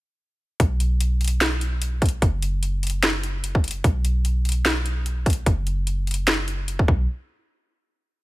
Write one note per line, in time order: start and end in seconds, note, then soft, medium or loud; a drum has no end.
0.60 2.20 B1 medium
0.60 kick loud
0.60 closed hi-hat medium
0.80 closed hi-hat medium
1.00 closed hi-hat medium
1.21 closed hi-hat medium
1.25 closed hi-hat medium
1.28 closed hi-hat medium
1.41 snare loud
1.41 closed hi-hat medium
1.61 closed hi-hat medium
1.82 closed hi-hat medium
2.02 kick loud
2.02 closed hi-hat medium
2.06 closed hi-hat medium
2.09 closed hi-hat medium
2.22 3.82 F#1 medium
2.22 kick loud
2.22 closed hi-hat medium
2.42 closed hi-hat medium
2.63 closed hi-hat medium
2.83 closed hi-hat medium
2.87 closed hi-hat medium
2.90 closed hi-hat medium
3.03 snare loud
3.03 closed hi-hat medium
3.23 closed hi-hat medium
3.44 closed hi-hat medium
3.55 kick loud
3.64 closed hi-hat soft
3.68 closed hi-hat medium
3.71 closed hi-hat medium
3.84 5.45 B1 medium
3.84 kick loud
3.84 closed hi-hat medium
4.05 closed hi-hat medium
4.25 closed hi-hat medium
4.45 closed hi-hat soft
4.49 closed hi-hat medium
4.52 closed hi-hat medium
4.65 snare loud
4.65 closed hi-hat medium
4.86 closed hi-hat medium
5.06 closed hi-hat medium
5.26 kick loud
5.26 closed hi-hat soft
5.30 closed hi-hat medium
5.33 closed hi-hat medium
5.46 6.88 F#1 medium
5.46 kick loud
5.46 closed hi-hat medium
5.67 closed hi-hat medium
5.87 closed hi-hat medium
6.07 closed hi-hat soft
6.11 closed hi-hat medium
6.14 closed hi-hat medium
6.28 snare loud
6.28 closed hi-hat medium
6.48 closed hi-hat medium
6.68 closed hi-hat medium
6.79 kick loud
6.88 7.07 B1 loud
6.88 kick loud